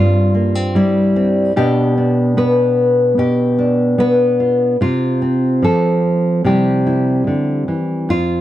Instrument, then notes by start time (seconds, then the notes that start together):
nylon-string guitar
Already playing: G2 G3 C4 F4
0.34 A#3
0.55 C4
0.75 G3 E4
1.16 C4
1.56 B2 B3 D4 G4
1.98 D4
2.37 B3 B4
3.18 B2 G4
3.59 D4
3.98 B3 B4
4.40 F4
4.81 C3 F4
5.22 C4
5.62 F3 A4
6.44 C3 G3 C4 E4 G4
6.87 E4
7.27 D3
7.68 E3
8.09 F2 F4